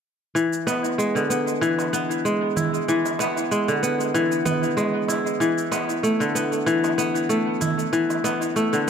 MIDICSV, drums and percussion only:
0, 0, Header, 1, 3, 480
1, 0, Start_track
1, 0, Tempo, 631579
1, 271, Time_signature, 4, 2, 24, 8
1, 6763, End_track
2, 0, Start_track
2, 0, Title_t, "Darbuka"
2, 510, Note_on_c, 9, 63, 71
2, 586, Note_off_c, 9, 63, 0
2, 650, Note_on_c, 9, 62, 51
2, 726, Note_off_c, 9, 62, 0
2, 1118, Note_on_c, 9, 62, 32
2, 1194, Note_off_c, 9, 62, 0
2, 1358, Note_on_c, 9, 63, 59
2, 1434, Note_off_c, 9, 63, 0
2, 1952, Note_on_c, 9, 64, 80
2, 2028, Note_off_c, 9, 64, 0
2, 2323, Note_on_c, 9, 63, 52
2, 2399, Note_off_c, 9, 63, 0
2, 2426, Note_on_c, 9, 63, 78
2, 2502, Note_off_c, 9, 63, 0
2, 2558, Note_on_c, 9, 62, 46
2, 2634, Note_off_c, 9, 62, 0
2, 3029, Note_on_c, 9, 62, 34
2, 3034, Note_on_c, 9, 63, 29
2, 3105, Note_off_c, 9, 62, 0
2, 3110, Note_off_c, 9, 63, 0
2, 3389, Note_on_c, 9, 64, 81
2, 3465, Note_off_c, 9, 64, 0
2, 3630, Note_on_c, 9, 63, 67
2, 3706, Note_off_c, 9, 63, 0
2, 3864, Note_on_c, 9, 63, 70
2, 3867, Note_on_c, 9, 62, 35
2, 3940, Note_off_c, 9, 63, 0
2, 3943, Note_off_c, 9, 62, 0
2, 4347, Note_on_c, 9, 63, 70
2, 4423, Note_off_c, 9, 63, 0
2, 4477, Note_on_c, 9, 62, 49
2, 4553, Note_off_c, 9, 62, 0
2, 4961, Note_on_c, 9, 62, 29
2, 5037, Note_off_c, 9, 62, 0
2, 5200, Note_on_c, 9, 63, 66
2, 5276, Note_off_c, 9, 63, 0
2, 5791, Note_on_c, 9, 64, 85
2, 5867, Note_off_c, 9, 64, 0
2, 6158, Note_on_c, 9, 63, 55
2, 6234, Note_off_c, 9, 63, 0
2, 6265, Note_on_c, 9, 63, 68
2, 6341, Note_off_c, 9, 63, 0
2, 6393, Note_on_c, 9, 62, 46
2, 6469, Note_off_c, 9, 62, 0
2, 6763, End_track
3, 0, Start_track
3, 0, Title_t, "Drums"
3, 276, Note_on_c, 9, 82, 37
3, 352, Note_off_c, 9, 82, 0
3, 402, Note_on_c, 9, 82, 26
3, 478, Note_off_c, 9, 82, 0
3, 516, Note_on_c, 9, 82, 64
3, 592, Note_off_c, 9, 82, 0
3, 643, Note_on_c, 9, 82, 28
3, 719, Note_off_c, 9, 82, 0
3, 757, Note_on_c, 9, 82, 39
3, 833, Note_off_c, 9, 82, 0
3, 885, Note_on_c, 9, 82, 25
3, 961, Note_off_c, 9, 82, 0
3, 994, Note_on_c, 9, 82, 61
3, 1070, Note_off_c, 9, 82, 0
3, 1123, Note_on_c, 9, 82, 29
3, 1199, Note_off_c, 9, 82, 0
3, 1237, Note_on_c, 9, 82, 37
3, 1313, Note_off_c, 9, 82, 0
3, 1365, Note_on_c, 9, 82, 26
3, 1441, Note_off_c, 9, 82, 0
3, 1473, Note_on_c, 9, 82, 64
3, 1549, Note_off_c, 9, 82, 0
3, 1605, Note_on_c, 9, 82, 29
3, 1681, Note_off_c, 9, 82, 0
3, 1717, Note_on_c, 9, 82, 37
3, 1793, Note_off_c, 9, 82, 0
3, 1955, Note_on_c, 9, 82, 68
3, 2031, Note_off_c, 9, 82, 0
3, 2086, Note_on_c, 9, 82, 28
3, 2162, Note_off_c, 9, 82, 0
3, 2195, Note_on_c, 9, 82, 41
3, 2271, Note_off_c, 9, 82, 0
3, 2324, Note_on_c, 9, 82, 28
3, 2400, Note_off_c, 9, 82, 0
3, 2437, Note_on_c, 9, 82, 71
3, 2513, Note_off_c, 9, 82, 0
3, 2566, Note_on_c, 9, 82, 31
3, 2642, Note_off_c, 9, 82, 0
3, 2675, Note_on_c, 9, 82, 41
3, 2751, Note_off_c, 9, 82, 0
3, 2802, Note_on_c, 9, 82, 27
3, 2878, Note_off_c, 9, 82, 0
3, 2915, Note_on_c, 9, 82, 69
3, 2991, Note_off_c, 9, 82, 0
3, 3044, Note_on_c, 9, 82, 29
3, 3120, Note_off_c, 9, 82, 0
3, 3155, Note_on_c, 9, 82, 39
3, 3231, Note_off_c, 9, 82, 0
3, 3283, Note_on_c, 9, 82, 27
3, 3359, Note_off_c, 9, 82, 0
3, 3391, Note_on_c, 9, 82, 76
3, 3467, Note_off_c, 9, 82, 0
3, 3522, Note_on_c, 9, 82, 29
3, 3598, Note_off_c, 9, 82, 0
3, 3632, Note_on_c, 9, 82, 42
3, 3708, Note_off_c, 9, 82, 0
3, 3874, Note_on_c, 9, 82, 75
3, 3950, Note_off_c, 9, 82, 0
3, 4004, Note_on_c, 9, 82, 30
3, 4080, Note_off_c, 9, 82, 0
3, 4114, Note_on_c, 9, 82, 41
3, 4190, Note_off_c, 9, 82, 0
3, 4241, Note_on_c, 9, 82, 28
3, 4317, Note_off_c, 9, 82, 0
3, 4351, Note_on_c, 9, 82, 67
3, 4427, Note_off_c, 9, 82, 0
3, 4481, Note_on_c, 9, 82, 31
3, 4557, Note_off_c, 9, 82, 0
3, 4592, Note_on_c, 9, 82, 42
3, 4668, Note_off_c, 9, 82, 0
3, 4721, Note_on_c, 9, 82, 29
3, 4797, Note_off_c, 9, 82, 0
3, 4834, Note_on_c, 9, 82, 71
3, 4910, Note_off_c, 9, 82, 0
3, 4960, Note_on_c, 9, 82, 30
3, 5036, Note_off_c, 9, 82, 0
3, 5073, Note_on_c, 9, 82, 39
3, 5149, Note_off_c, 9, 82, 0
3, 5199, Note_on_c, 9, 82, 27
3, 5275, Note_off_c, 9, 82, 0
3, 5312, Note_on_c, 9, 82, 69
3, 5388, Note_off_c, 9, 82, 0
3, 5439, Note_on_c, 9, 82, 31
3, 5515, Note_off_c, 9, 82, 0
3, 5549, Note_on_c, 9, 82, 42
3, 5625, Note_off_c, 9, 82, 0
3, 5788, Note_on_c, 9, 82, 72
3, 5864, Note_off_c, 9, 82, 0
3, 5922, Note_on_c, 9, 82, 30
3, 5998, Note_off_c, 9, 82, 0
3, 6030, Note_on_c, 9, 82, 41
3, 6106, Note_off_c, 9, 82, 0
3, 6160, Note_on_c, 9, 82, 28
3, 6236, Note_off_c, 9, 82, 0
3, 6272, Note_on_c, 9, 82, 71
3, 6348, Note_off_c, 9, 82, 0
3, 6400, Note_on_c, 9, 82, 31
3, 6476, Note_off_c, 9, 82, 0
3, 6510, Note_on_c, 9, 82, 42
3, 6586, Note_off_c, 9, 82, 0
3, 6638, Note_on_c, 9, 82, 28
3, 6714, Note_off_c, 9, 82, 0
3, 6763, End_track
0, 0, End_of_file